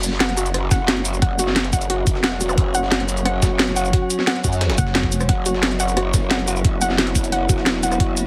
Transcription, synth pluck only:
0, 0, Header, 1, 2, 480
1, 0, Start_track
1, 0, Tempo, 338983
1, 1729, Time_signature, 4, 2, 24, 8
1, 11709, End_track
2, 0, Start_track
2, 0, Title_t, "Synth pluck"
2, 0, Program_c, 0, 84
2, 287, Note_on_c, 0, 78, 102
2, 366, Note_off_c, 0, 78, 0
2, 528, Note_on_c, 0, 66, 78
2, 606, Note_off_c, 0, 66, 0
2, 1007, Note_on_c, 0, 78, 101
2, 1086, Note_off_c, 0, 78, 0
2, 1248, Note_on_c, 0, 66, 77
2, 1326, Note_off_c, 0, 66, 0
2, 1727, Note_on_c, 0, 78, 101
2, 1806, Note_off_c, 0, 78, 0
2, 1968, Note_on_c, 0, 66, 78
2, 2046, Note_off_c, 0, 66, 0
2, 2448, Note_on_c, 0, 78, 107
2, 2526, Note_off_c, 0, 78, 0
2, 2688, Note_on_c, 0, 66, 81
2, 2766, Note_off_c, 0, 66, 0
2, 3168, Note_on_c, 0, 78, 100
2, 3246, Note_off_c, 0, 78, 0
2, 3408, Note_on_c, 0, 66, 75
2, 3486, Note_off_c, 0, 66, 0
2, 3887, Note_on_c, 0, 78, 106
2, 3966, Note_off_c, 0, 78, 0
2, 4128, Note_on_c, 0, 66, 76
2, 4206, Note_off_c, 0, 66, 0
2, 4608, Note_on_c, 0, 78, 101
2, 4686, Note_off_c, 0, 78, 0
2, 4847, Note_on_c, 0, 66, 78
2, 4926, Note_off_c, 0, 66, 0
2, 5327, Note_on_c, 0, 78, 101
2, 5406, Note_off_c, 0, 78, 0
2, 5568, Note_on_c, 0, 66, 84
2, 5646, Note_off_c, 0, 66, 0
2, 6048, Note_on_c, 0, 78, 102
2, 6126, Note_off_c, 0, 78, 0
2, 6288, Note_on_c, 0, 66, 76
2, 6366, Note_off_c, 0, 66, 0
2, 6768, Note_on_c, 0, 78, 105
2, 6846, Note_off_c, 0, 78, 0
2, 7009, Note_on_c, 0, 66, 76
2, 7087, Note_off_c, 0, 66, 0
2, 7489, Note_on_c, 0, 78, 101
2, 7567, Note_off_c, 0, 78, 0
2, 7730, Note_on_c, 0, 66, 78
2, 7807, Note_off_c, 0, 66, 0
2, 8210, Note_on_c, 0, 78, 106
2, 8287, Note_off_c, 0, 78, 0
2, 8451, Note_on_c, 0, 66, 82
2, 8528, Note_off_c, 0, 66, 0
2, 8930, Note_on_c, 0, 78, 101
2, 9007, Note_off_c, 0, 78, 0
2, 9169, Note_on_c, 0, 66, 77
2, 9247, Note_off_c, 0, 66, 0
2, 9649, Note_on_c, 0, 78, 104
2, 9726, Note_off_c, 0, 78, 0
2, 9889, Note_on_c, 0, 66, 79
2, 9967, Note_off_c, 0, 66, 0
2, 10369, Note_on_c, 0, 78, 102
2, 10447, Note_off_c, 0, 78, 0
2, 10608, Note_on_c, 0, 66, 78
2, 10686, Note_off_c, 0, 66, 0
2, 11089, Note_on_c, 0, 78, 98
2, 11167, Note_off_c, 0, 78, 0
2, 11328, Note_on_c, 0, 66, 83
2, 11406, Note_off_c, 0, 66, 0
2, 11709, End_track
0, 0, End_of_file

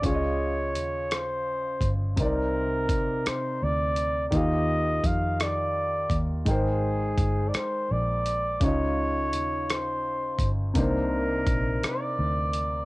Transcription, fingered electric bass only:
0, 0, Header, 1, 3, 480
1, 0, Start_track
1, 0, Tempo, 714286
1, 25, Time_signature, 6, 3, 24, 8
1, 8635, End_track
2, 0, Start_track
2, 0, Title_t, "Fingered electric bass"
2, 0, Program_c, 0, 33
2, 27, Note_on_c, 0, 37, 95
2, 512, Note_off_c, 0, 37, 0
2, 512, Note_on_c, 0, 39, 73
2, 1201, Note_off_c, 0, 39, 0
2, 1220, Note_on_c, 0, 31, 73
2, 1438, Note_off_c, 0, 31, 0
2, 1464, Note_on_c, 0, 36, 93
2, 1947, Note_off_c, 0, 36, 0
2, 1947, Note_on_c, 0, 34, 83
2, 2162, Note_off_c, 0, 34, 0
2, 2436, Note_on_c, 0, 38, 80
2, 2884, Note_off_c, 0, 38, 0
2, 2908, Note_on_c, 0, 39, 96
2, 3359, Note_off_c, 0, 39, 0
2, 3388, Note_on_c, 0, 41, 66
2, 4079, Note_off_c, 0, 41, 0
2, 4104, Note_on_c, 0, 39, 71
2, 4320, Note_off_c, 0, 39, 0
2, 4349, Note_on_c, 0, 32, 96
2, 4800, Note_off_c, 0, 32, 0
2, 4831, Note_on_c, 0, 31, 72
2, 5044, Note_off_c, 0, 31, 0
2, 5316, Note_on_c, 0, 34, 79
2, 5763, Note_off_c, 0, 34, 0
2, 5791, Note_on_c, 0, 37, 88
2, 6280, Note_off_c, 0, 37, 0
2, 6280, Note_on_c, 0, 39, 84
2, 6965, Note_off_c, 0, 39, 0
2, 6984, Note_on_c, 0, 31, 72
2, 7200, Note_off_c, 0, 31, 0
2, 7232, Note_on_c, 0, 36, 94
2, 7681, Note_off_c, 0, 36, 0
2, 7712, Note_on_c, 0, 34, 80
2, 7925, Note_off_c, 0, 34, 0
2, 8191, Note_on_c, 0, 38, 87
2, 8635, Note_off_c, 0, 38, 0
2, 8635, End_track
3, 0, Start_track
3, 0, Title_t, "Muted fingered electric bass strokes"
3, 2195, Note_on_c, 9, 29, 44
3, 2262, Note_off_c, 9, 29, 0
3, 5075, Note_on_c, 9, 29, 42
3, 5142, Note_off_c, 9, 29, 0
3, 7956, Note_on_c, 9, 29, 43
3, 8023, Note_off_c, 9, 29, 0
3, 8635, End_track
0, 0, End_of_file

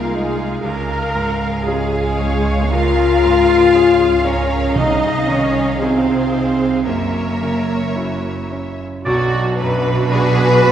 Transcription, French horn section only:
0, 0, Header, 1, 2, 480
1, 0, Start_track
1, 0, Tempo, 1005025
1, 314, Time_signature, 4, 2, 24, 8
1, 795, Tempo, 1060071
1, 1275, Tempo, 1023891
1, 2715, Tempo, 1083032
1, 4155, Tempo, 1058201
1, 4914, End_track
2, 0, Start_track
2, 0, Title_t, "French horn section"
2, 0, Program_c, 0, 60
2, 0, Note_on_c, 0, 58, 91
2, 71, Note_off_c, 0, 58, 0
2, 72, Note_on_c, 0, 56, 77
2, 313, Note_off_c, 0, 56, 0
2, 781, Note_on_c, 0, 56, 93
2, 1251, Note_off_c, 0, 56, 0
2, 1266, Note_on_c, 0, 65, 110
2, 1986, Note_off_c, 0, 65, 0
2, 1992, Note_on_c, 0, 61, 90
2, 2230, Note_on_c, 0, 63, 96
2, 2232, Note_off_c, 0, 61, 0
2, 2468, Note_on_c, 0, 61, 90
2, 2473, Note_off_c, 0, 63, 0
2, 2708, Note_off_c, 0, 61, 0
2, 2710, Note_on_c, 0, 60, 82
2, 3183, Note_off_c, 0, 60, 0
2, 3185, Note_on_c, 0, 58, 72
2, 3915, Note_off_c, 0, 58, 0
2, 4637, Note_on_c, 0, 59, 90
2, 4914, Note_off_c, 0, 59, 0
2, 4914, End_track
0, 0, End_of_file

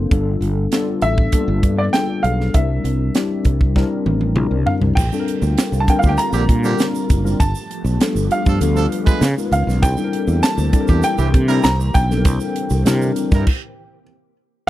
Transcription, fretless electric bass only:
0, 0, Header, 1, 2, 480
1, 0, Start_track
1, 0, Tempo, 607287
1, 89, Time_signature, 4, 2, 24, 8
1, 11614, End_track
2, 0, Start_track
2, 0, Title_t, "Fretless electric bass"
2, 0, Program_c, 0, 35
2, 90, Note_on_c, 0, 31, 95
2, 284, Note_off_c, 0, 31, 0
2, 322, Note_on_c, 0, 31, 86
2, 519, Note_off_c, 0, 31, 0
2, 808, Note_on_c, 0, 33, 83
2, 1003, Note_off_c, 0, 33, 0
2, 1168, Note_on_c, 0, 31, 91
2, 1266, Note_off_c, 0, 31, 0
2, 1288, Note_on_c, 0, 43, 79
2, 1483, Note_off_c, 0, 43, 0
2, 1770, Note_on_c, 0, 35, 82
2, 1964, Note_off_c, 0, 35, 0
2, 2009, Note_on_c, 0, 36, 85
2, 2203, Note_off_c, 0, 36, 0
2, 2247, Note_on_c, 0, 36, 80
2, 2442, Note_off_c, 0, 36, 0
2, 2729, Note_on_c, 0, 36, 81
2, 3021, Note_off_c, 0, 36, 0
2, 3208, Note_on_c, 0, 33, 76
2, 3446, Note_off_c, 0, 33, 0
2, 3446, Note_on_c, 0, 34, 75
2, 3545, Note_off_c, 0, 34, 0
2, 3564, Note_on_c, 0, 36, 80
2, 3664, Note_off_c, 0, 36, 0
2, 3804, Note_on_c, 0, 36, 67
2, 3904, Note_off_c, 0, 36, 0
2, 3927, Note_on_c, 0, 34, 96
2, 4026, Note_off_c, 0, 34, 0
2, 4284, Note_on_c, 0, 38, 90
2, 4384, Note_off_c, 0, 38, 0
2, 4522, Note_on_c, 0, 36, 82
2, 4623, Note_off_c, 0, 36, 0
2, 4771, Note_on_c, 0, 38, 90
2, 4868, Note_off_c, 0, 38, 0
2, 5000, Note_on_c, 0, 34, 87
2, 5102, Note_off_c, 0, 34, 0
2, 5127, Note_on_c, 0, 46, 83
2, 5323, Note_off_c, 0, 46, 0
2, 5611, Note_on_c, 0, 30, 82
2, 5805, Note_off_c, 0, 30, 0
2, 5847, Note_on_c, 0, 31, 92
2, 5946, Note_off_c, 0, 31, 0
2, 6200, Note_on_c, 0, 35, 91
2, 6302, Note_off_c, 0, 35, 0
2, 6443, Note_on_c, 0, 31, 79
2, 6543, Note_off_c, 0, 31, 0
2, 6690, Note_on_c, 0, 43, 85
2, 6787, Note_off_c, 0, 43, 0
2, 6804, Note_on_c, 0, 38, 87
2, 7000, Note_off_c, 0, 38, 0
2, 7280, Note_on_c, 0, 49, 98
2, 7381, Note_off_c, 0, 49, 0
2, 7521, Note_on_c, 0, 37, 83
2, 7621, Note_off_c, 0, 37, 0
2, 7644, Note_on_c, 0, 35, 83
2, 7766, Note_off_c, 0, 35, 0
2, 7766, Note_on_c, 0, 36, 97
2, 7864, Note_off_c, 0, 36, 0
2, 8121, Note_on_c, 0, 40, 86
2, 8221, Note_off_c, 0, 40, 0
2, 8360, Note_on_c, 0, 38, 79
2, 8461, Note_off_c, 0, 38, 0
2, 8606, Note_on_c, 0, 40, 86
2, 8704, Note_off_c, 0, 40, 0
2, 8841, Note_on_c, 0, 36, 96
2, 8941, Note_off_c, 0, 36, 0
2, 8963, Note_on_c, 0, 48, 91
2, 9159, Note_off_c, 0, 48, 0
2, 9204, Note_on_c, 0, 36, 99
2, 9400, Note_off_c, 0, 36, 0
2, 9444, Note_on_c, 0, 35, 89
2, 9683, Note_off_c, 0, 35, 0
2, 9683, Note_on_c, 0, 36, 98
2, 9782, Note_off_c, 0, 36, 0
2, 10043, Note_on_c, 0, 36, 85
2, 10142, Note_off_c, 0, 36, 0
2, 10161, Note_on_c, 0, 48, 90
2, 10357, Note_off_c, 0, 48, 0
2, 10527, Note_on_c, 0, 43, 86
2, 10624, Note_off_c, 0, 43, 0
2, 11614, End_track
0, 0, End_of_file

